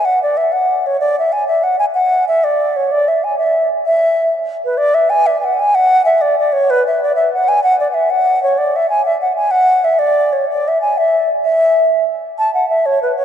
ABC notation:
X:1
M:6/8
L:1/16
Q:3/8=127
K:Emix
V:1 name="Flute"
f2 d2 e2 f4 c2 | d2 e2 g2 e2 f2 g2 | f4 e2 d4 c2 | d2 e2 g2 e4 z2 |
e8 z2 B2 | d2 e2 g2 e3/2 g/2 f2 g2 | f4 e2 d2 d2 c2 | B2 e2 d2 e2 f2 g2 |
f2 d3/2 f/2 e2 f4 c2 | d2 e2 g2 e2 f2 g2 | f4 e2 d4 c2 | d2 e2 g2 e4 z2 |
e8 z4 | a2 f2 e2 c2 B2 c2 |]